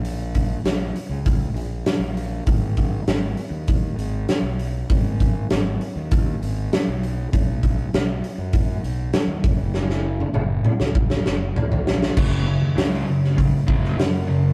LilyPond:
<<
  \new Staff \with { instrumentName = "Distorted electric guitar" } { \clef bass \time 4/4 \key fis \mixolydian \tempo 4 = 99 r1 | r1 | r1 | r1 |
r1 | <fis, cis fis>8 <fis, cis>8 <fis, cis fis>8 <fis, cis>8 <fis, cis>8 <fis, cis fis>8 <fis, cis>8 <fis, cis>8 | }
  \new Staff \with { instrumentName = "Fingered electric bass" } { \clef bass \time 4/4 \key fis \mixolydian ais,,4 ais,,8 r16 cis,8. ais,,8 r16 ais,,8. | gis,,4 gis,,8 r16 dis,8. gis,,8 r16 b,,8. | gis,,4 gis,,8 r16 dis,8. gis,,8 r16 b,,8. | b,,4 b,,8 r16 fis,8. b,,8 r16 dis,16 fis,,8~ |
fis,,4 fis,,8 r16 cis,8. fis,,8 r16 ais,,8. | fis,,8. dis,16 cis,8 r8 cis,16 r16 fis,8 fis,4 | }
  \new DrumStaff \with { instrumentName = "Drums" } \drummode { \time 4/4 hho8 <hho bd>8 <hho sn>8 hho8 <hho bd>8 hho8 <hho sn>8 hho8 | <hho bd>8 <hho bd>8 <hho sn>8 hho8 <hho bd>8 hho8 <hho sn>8 hho8 | <hho bd>8 <hho bd>8 <hho sn>8 hho8 <hho bd>8 hho8 <hho sn>8 hho8 | <hho bd>8 <hho bd>8 <hho sn>8 hho8 <hho bd>8 hho8 <hho sn>8 <hho bd>8 |
sn16 sn8 tommh16 toml8 toml16 sn16 bd16 sn16 sn8 tomfh16 tomfh16 sn16 sn16 | <cymc bd>4 <hho sn>8. sn16 <hho bd>8 bd16 sn16 <hho sn>4 | }
>>